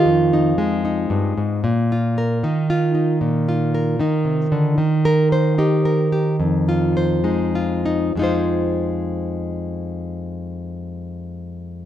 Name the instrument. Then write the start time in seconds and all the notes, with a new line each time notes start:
nylon-string guitar
Already playing: D#3 F4
0.05 F2
0.33 D#4
0.58 G#3
0.85 D#4
1.10 G2
1.38 G#2
1.64 A#2
1.92 F4
2.18 A#4
2.43 D#3 D#4
2.70 F4
2.95 D#4
3.21 A#2
3.49 F4
3.75 A#4
3.99 D#3 D#4
4.25 C3
4.52 D3
4.78 D#3
5.05 A#4
5.32 C5
5.58 D#4 G4
5.85 A#4
6.12 G4
6.40 F2
6.69 F4
6.97 C5
7.24 G#3 D#4
7.55 F4
7.86 D#4
8.15 F2 G#3 D#4
8.22 F4 C5